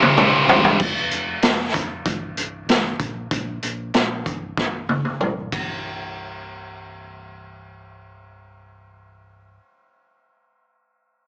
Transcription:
Already playing: C2 G2 C3
0.02 high tom
0.17 C1 C2 G2 C3, mid tom
0.47 C1 C2 G2 C3, floor tom
0.64 floor tom
0.79 F1, kick, crash
1.11 F1, closed hi-hat
1.42 F1, snare, closed hi-hat
1.73 F1, kick, closed hi-hat
2.05 C1, kick, closed hi-hat
2.36 C1, closed hi-hat
2.67 C1, snare, closed hi-hat
3.00 A#1, kick, closed hi-hat
3.31 A#1, kick, closed hi-hat
3.62 A#1, closed hi-hat
3.94 A#1, snare, closed hi-hat
4.26 C1, kick, closed hi-hat
4.57 C1, kick, snare
4.89 high tom
5.05 high tom
5.20 C1, mid tom
5.52 C1, kick, ride

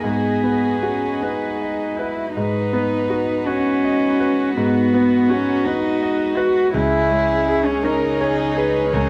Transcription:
Already playing: F#4 D#5
0.03 G#2 B3 G#4 B4
0.44 B3
0.82 C#4 F#4
1.22 D#4 B4
1.61 D#5
1.98 E4 B4
2.36 G#2 D#4 F#4 B4
2.73 B3
3.10 F#4
3.47 C#4 F#4 B4
3.84 D#5
4.20 B4
4.57 G#2 B3
4.94 B3
5.29 C#4 F#4
5.66 D#4 B4
6.03 D#5
6.37 F#4 B4
6.74 C#2 C#4 E4 G#4 C#5
7.11 G#3
7.49 G#4
7.66 C#4
7.84 C#4 D#4 A#4
8.21 G#4 C#5
8.57 G#4 B4
8.92 C#2 C#4 A#4

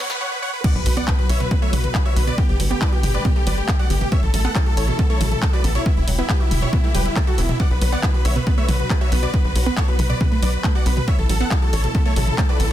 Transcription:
Already playing: C#3 E3 A3 E4 A4, riser
0.10 B4, snare, closed hi-hat
0.21 C#5 F#5
0.32 B4
0.42 C#5 F#5
0.53 B4
0.64 D3 F#3 B3 F#4 B4 D5 F#5, kick, closed hi-hat, crash, impact
0.75 B1 B4, closed hi-hat
0.86 B1 F#3 B4, open hi-hat
0.97 B3 D5 F#5, closed hi-hat
1.08 E4 B4, kick, clap, closed hi-hat
1.19 F#4 B4, closed hi-hat
1.29 B1 C#5 E5, open hi-hat
1.40 B2 B4, closed hi-hat
1.51 B3 B4, kick, closed hi-hat
1.62 A3 C#5 E5, closed hi-hat
1.73 B1 F#3 B4, open hi-hat, mid tom
1.84 B4, closed hi-hat, mid tom
1.95 A3 B4, kick, clap, closed hi-hat
2.05 F#4 C#5 E5, closed hi-hat
2.16 B1 B3 B4, open hi-hat
2.27 B2 B4 D5, closed hi-hat
2.38 G3 A3 B3 G4, kick, closed hi-hat
2.49 G1 G4, closed hi-hat
2.60 G1 F#3, open hi-hat
2.71 B3 G4
2.81 E4 B4 D5, kick, clap, closed hi-hat
2.92 F#4 G4, closed hi-hat
3.03 G1 G4, open hi-hat, mid tom
3.14 B2 B4 D5, closed hi-hat
3.25 B3 G4, kick, closed hi-hat, mid tom
3.36 A3 G4, closed hi-hat
3.47 G1 F#3 B4 D5, open hi-hat
3.58 G4, closed hi-hat
3.68 A3 G4, kick, clap, closed hi-hat
3.79 F#4 D5 F#5, closed hi-hat
3.90 G1 B3 G4, open hi-hat
4.01 B2 G4, closed hi-hat, mid tom
4.12 C#3 E3 B3 E4 A4 C#5 E5, kick, closed hi-hat
4.23 A1 A4, closed hi-hat
4.34 A1 F#3 A4, open hi-hat
4.45 B3 A4 F#5, closed hi-hat
4.55 E4 A4, kick, clap, closed hi-hat
4.66 F#4 A4, closed hi-hat
4.77 A1 A4 C#5, open hi-hat
4.88 B2 A4, closed hi-hat
4.99 B3 A4, kick, closed hi-hat
5.10 A3 A4 C#5, closed hi-hat
5.21 A1 F#3 A4, open hi-hat, mid tom
5.32 A4, closed hi-hat, mid tom
5.42 A3 A4, kick, clap, closed hi-hat
5.53 F#4 B4 D5, closed hi-hat
5.64 A1 B3 A4, open hi-hat
5.75 B2 E4 C#5, closed hi-hat
5.86 D3 G3 B3 E4 G4, kick, closed hi-hat
5.97 E1 E4, closed hi-hat
6.07 E1 F#3, open hi-hat
6.18 B3 E4, closed hi-hat
6.29 E4 G4 B4, kick, clap, closed hi-hat
6.40 E4 F#4, closed hi-hat
6.51 E1 E4, open hi-hat, mid tom
6.62 B2 E4 C#5, closed hi-hat
6.73 B3 E4, kick, closed hi-hat, mid tom
6.84 A3 E4, closed hi-hat
6.95 E1 F#3 G4 B4, open hi-hat
7.06 E4, closed hi-hat
7.16 A3 E4, kick, clap, closed hi-hat
7.27 F#4 A4, closed hi-hat
7.38 E1 B3 E4, open hi-hat
7.49 B2 E4, closed hi-hat, mid tom
7.60 F#3 B3 F#4 B4 D5 F#5, kick, closed hi-hat
7.71 B1 B4, closed hi-hat
7.81 B1 F#3 B4, open hi-hat
7.92 B3 D5 F#5, closed hi-hat
8.03 E4 B4, kick, clap, closed hi-hat
8.14 F#4 B4, closed hi-hat
8.25 B1 C#5 E5, open hi-hat
8.36 B2 B4, closed hi-hat
8.47 B3 B4, kick, closed hi-hat
8.58 A3 C#5 E5, closed hi-hat
8.68 B1 F#3 B4, open hi-hat, mid tom
8.79 B4, closed hi-hat, mid tom
8.90 A3 B4, kick, clap, closed hi-hat
9.01 F#4 C#5 E5, closed hi-hat
9.12 B1 B3 B4, open hi-hat
9.23 B2 B4 D5, closed hi-hat
9.33 B3 B4, kick, closed hi-hat
9.44 B1 B4, closed hi-hat
9.56 B1 F#3, open hi-hat
9.66 B3 B4, closed hi-hat
9.77 E4 A4 C#5, kick, clap, closed hi-hat
9.88 F#4 B4, closed hi-hat
9.99 B1 B4, open hi-hat, mid tom
10.10 B2 B4 D5, closed hi-hat
10.21 B3 B4, kick, closed hi-hat, mid tom
10.31 A3 B4, closed hi-hat
10.42 B1 F#3 B4 D5, open hi-hat
10.53 B4, closed hi-hat
10.64 A3 B4, kick, clap, closed hi-hat
10.75 F#4 D5 F#5, closed hi-hat
10.86 B1 B3 B4, open hi-hat
10.97 B2 B4, closed hi-hat, mid tom
11.07 C#3 E3 A3 B3 E4 A4 C#5 E5, kick, closed hi-hat
11.19 A1 A4, closed hi-hat
11.29 A1 F#3 A4, open hi-hat
11.40 B3 A4 F#5, closed hi-hat
11.51 E4 A4, kick, clap, closed hi-hat
11.62 F#4 A4, closed hi-hat
11.73 A1 A4 C#5, open hi-hat
11.84 B2 A4, closed hi-hat
11.95 B3 A4, kick, closed hi-hat
12.05 A3 A4 C#5, closed hi-hat
12.16 A1 F#3 A4, open hi-hat, mid tom
12.27 A4, closed hi-hat, mid tom
12.38 A3 A4, kick, clap, closed hi-hat
12.49 F#4 B4 D5, closed hi-hat
12.60 A1 B3 A4, open hi-hat

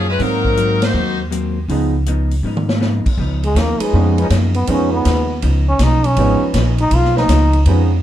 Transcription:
Already playing: F#2
0.09 G#3 C#4 F4 B4
0.19 G#2 F#3 A#3 C4 D#4 A#4, open hi-hat
0.45 kick
0.56 G#2 F#3 A#3 C4, closed hi-hat
0.82 A#3 D#4 F#4 C5, snare, ride
0.93 D#2 G#2 F#3 A#3 C4
1.31 G#2 F#3 A#3 C4, closed hi-hat
1.68 C#2 C#3 F3 G#3 B3 D#4, open hi-hat
2.06 C#3 F3 B3 D#4, closed hi-hat
2.31 open hi-hat
2.43 G#2 C#3 F3 B3 D#4
2.57 mid tom
2.69 snare
2.80 C#3 F3 B3 D#4, snare
3.06 muted upright bass stroke, kick, crash
3.17 C#2 C#3 F3 B3 D#4
3.43 G#3, ride
3.55 D#2 C#3 F3 B3 D#4, snare, hi-hat pedal, ride
3.59 A#3
3.80 F3 G#3 C#4 D#4 B4, muted upright bass stroke, ride
3.93 F2 C#3 F3 G#3 B3 C#4 D#4
4.18 F3 C#4 D#4 B4, ride
4.30 F#2 C#3 F3 B3 D#4, snare, hi-hat pedal, ride
4.54 B3, ride
4.67 F2 C#3 F3 G#3 B3 C#4 D#4 B4, ride
4.71 C#4
4.94 B3
5.05 D#2 C#3 F3 B3 D#4, snare, hi-hat pedal, ride
5.42 C#2 C#3 F3 B3 D#4, ride
5.69 C#4
5.79 B1 C#3 F3 B3 D#4, snare, hi-hat pedal, ride
5.84 D#4
6.04 C#4, ride
6.16 G#1 C#3 F3 G#3 B3 C#4 D#4 B4, ride
6.54 A#1 C#3 F3 B3 D#4, snare, hi-hat pedal, ride
6.78 D#4, ride
6.91 B1 C#3 F3 B3, ride
6.95 D#4 F4
7.04 snare
7.16 F3 C#4 D#4 B4, snare
7.28 C#2 C#3 F3 B3 D#4, snare, hi-hat pedal, ride
7.53 ride
7.66 F2 C#3 F3 G#3 B3 C#4 D#4 B4, ride

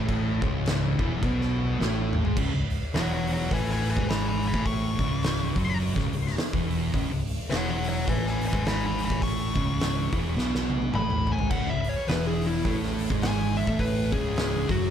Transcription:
Already playing: A1 A2 A3
0.08 kick, crash
0.42 C#1 C#2 C#3, kick
0.66 snare, crash
0.99 E1 E2 E3, kick
1.23 B1 B2 B3, kick, crash
1.41 snare
1.80 A1 A2 A3, snare
2.13 mid tom
2.25 G#1 G#2 G#3, floor tom
2.37 C#1 C#2 C#3, kick, crash
2.54 C#1 C#2
2.70 open hi-hat
2.94 E1 E2 E3 C#5 F#5, snare, open hi-hat
3.14 C#5 F#5
3.27 open hi-hat
3.33 C#5 F#5
3.51 A1 A2 A3 B4 G#5, kick, open hi-hat
3.70 B4 G#5, snare
3.85 open hi-hat
3.90 B4 G#5
3.97 G#1 G#2 G#3, kick
4.09 G#5 B5, snare, open hi-hat
4.28 G#5 B5
4.42 open hi-hat
4.47 G#5 B5
4.54 A1 A2 A3, kick
4.66 C#6, kick, open hi-hat
4.99 C#1 C#2 C#3, kick, open hi-hat
5.23 snare, open hi-hat
5.56 F#1 F#2 F#3, kick, open hi-hat
5.80 open hi-hat
5.96 C#1 C#2 C#3, kick, snare
6.13 C#1 C#2, open hi-hat
6.27 snare
6.37 snare, open hi-hat
6.53 E1 E2 E3, kick
6.71 open hi-hat
6.93 C#1 C#2 C#3, kick, open hi-hat
7.10 C#1 C#2
7.27 open hi-hat
7.50 E1 E2 E3 C#5 F#5, snare, open hi-hat
7.70 C#5 F#5
7.84 open hi-hat
7.88 C#5 F#5
8.07 A1 A2 A3 B4 G#5, kick, open hi-hat
8.27 B4 G#5, snare
8.41 open hi-hat
8.47 B4 G#5
8.52 G#1 G#2 G#3, kick
8.65 G#5 B5, snare, open hi-hat
8.86 G#5 B5
8.99 open hi-hat
9.04 G#5 B5
9.09 A1 A2 A3, kick
9.22 C#6, kick, open hi-hat
9.55 C#1 C#2 C#3, kick, open hi-hat
9.80 snare, open hi-hat
10.12 E1 E2 E3, kick, open hi-hat
10.35 B1 B2 B3, snare
10.55 snare
10.70 high tom
10.82 high tom
10.93 A1 A2 A3 B5, mid tom
11.10 mid tom
11.27 floor tom
11.32 G#5
11.39 G#1 G#2 G#3, floor tom
11.50 C#1 C#2 C#3 F#5, kick, crash
11.68 C#1 C#2 E5
11.84 open hi-hat
11.89 C#5
12.08 E1 E2 E3 B4, snare, open hi-hat
12.27 G#4
12.41 open hi-hat
12.46 E4
12.65 A1 A2 A3, kick, open hi-hat
12.83 snare
12.98 open hi-hat
13.10 G#1 G#2 G#3, kick
13.22 G#5, snare, open hi-hat
13.56 E5, open hi-hat
13.67 A1 A2 A3, kick
13.79 B4, kick, open hi-hat
14.12 C#1 C#2 C#3 G#4, kick, open hi-hat
14.36 snare, open hi-hat
14.69 F#1 F#2 F#3 F#4, kick, open hi-hat

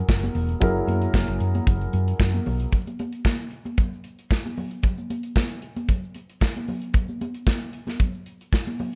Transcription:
Already playing: F#3 E4 G#4 A#4
0.09 F#1, kick, snare, muted conga, shaker
0.23 closed hi-hat, high conga, shaker
0.35 E1, open hi-hat, muted conga, high conga, shaker
0.49 closed hi-hat, shaker
0.60 F#1 F#3 E4 G#4 A#4, kick, closed hi-hat, low conga, shaker
0.75 shaker
0.87 F#2, closed hi-hat, high conga
1.02 closed hi-hat, shaker
1.14 F#1, kick, snare, high conga, shaker
1.28 F#1, closed hi-hat, shaker
1.40 F#2, closed hi-hat
1.55 closed hi-hat, high conga, shaker
1.67 F#1, kick, closed hi-hat, muted conga, low conga, shaker
1.81 closed hi-hat, shaker
1.93 F#2, closed hi-hat, muted conga, shaker
2.08 closed hi-hat, shaker
2.20 F#2, kick, snare, shaker
2.34 high conga, shaker
2.46 B1, open hi-hat, muted conga, high conga, low conga, shaker
2.60 closed hi-hat, shaker
2.72 kick, closed hi-hat, low conga, shaker
2.86 closed hi-hat, high conga, shaker
2.99 closed hi-hat, muted conga, high conga, shaker
3.13 closed hi-hat, shaker
3.25 kick, snare, muted conga, high conga, shaker
3.39 closed hi-hat, shaker
3.51 closed hi-hat, muted conga
3.65 closed hi-hat, high conga, shaker
3.78 kick, closed hi-hat, low conga, shaker
3.93 shaker
4.04 closed hi-hat, shaker
4.19 closed hi-hat, shaker
4.31 kick, snare, muted conga, shaker
4.45 high conga, shaker
4.57 open hi-hat, high conga, low conga
4.71 closed hi-hat, shaker
4.83 kick, closed hi-hat, muted conga, low conga, shaker
4.97 high conga, shaker
5.10 closed hi-hat, muted conga, high conga, shaker
5.23 closed hi-hat, shaker
5.36 kick, snare, muted conga, high conga, shaker
5.50 closed hi-hat, shaker
5.62 closed hi-hat, muted conga
5.76 closed hi-hat, high conga, shaker
5.88 kick, closed hi-hat, muted conga, low conga, shaker
6.03 shaker
6.15 closed hi-hat, muted conga, shaker
6.30 closed hi-hat, shaker
6.41 kick, snare, shaker
6.55 closed hi-hat, high conga, shaker
6.68 open hi-hat, high conga, low conga
6.82 closed hi-hat, shaker
6.94 kick, closed hi-hat, muted conga, low conga, shaker
7.08 high conga, shaker
7.21 closed hi-hat, muted conga, high conga, shaker
7.34 closed hi-hat, shaker
7.47 kick, snare, high conga, shaker
7.61 closed hi-hat, shaker
7.73 closed hi-hat
7.87 snare, closed hi-hat, high conga, shaker
8.00 kick, closed hi-hat, low conga, shaker
8.14 shaker
8.26 closed hi-hat, shaker
8.40 closed hi-hat, shaker
8.53 kick, snare, shaker
8.67 high conga, shaker
8.79 open hi-hat, muted conga, high conga, low conga

